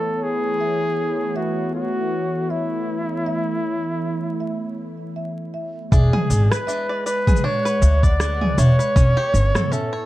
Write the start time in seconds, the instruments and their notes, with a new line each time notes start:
Already playing: analog synth pad E3 A3 B3 E4 C#5, flugelhorn A4
0.23 flugelhorn G#4
0.61 marimba E5
1.36 flugelhorn F#4, marimba E5
1.75 flugelhorn F#4
2.50 flugelhorn E4, marimba E5
3.26 marimba E5
4.40 marimba E5
5.16 marimba E5
5.54 marimba E5
5.92 upright bass E1, analog synth pad G#3, five-string banjo D4, flugelhorn G#4, marimba E5, kick, cabasa
6.13 five-string banjo G#4, mid tom
6.25 analog synth pad B4
6.30 upright bass G#1, five-string banjo D4, cabasa
6.51 flugelhorn B4, five-string banjo B4, cross-stick, cabasa
6.67 five-string banjo D4, marimba E5, cabasa
6.89 five-string banjo D5
6.98 analog synth pad F#5
7.06 flugelhorn B4, five-string banjo D5, cabasa
7.27 five-string banjo G#4, kick, mid tom, cabasa
7.36 cabasa
7.44 five-string banjo D4, flugelhorn C#5
7.65 five-string banjo B4, cabasa
7.82 upright bass D2, five-string banjo D4, marimba E5, kick, cabasa
8.03 five-string banjo D5, flugelhorn D5, kick, cabasa
8.20 five-string banjo D4, cross-stick, cabasa
8.41 five-string banjo G#4, mid tom
8.58 upright bass E1, five-string banjo D4, flugelhorn C#5, marimba E5, cabasa
8.79 five-string banjo B4, cabasa
8.96 upright bass E1, analog synth pad B3, five-string banjo C#4, kick, cabasa
9.17 five-string banjo G4
9.34 upright bass G1, five-string banjo C#4, cabasa
9.49 analog synth pad E4
9.55 five-string banjo A4, cross-stick, mid tom, cabasa
9.72 five-string banjo C#4, flugelhorn A4, marimba E5, cabasa
9.93 five-string banjo C#5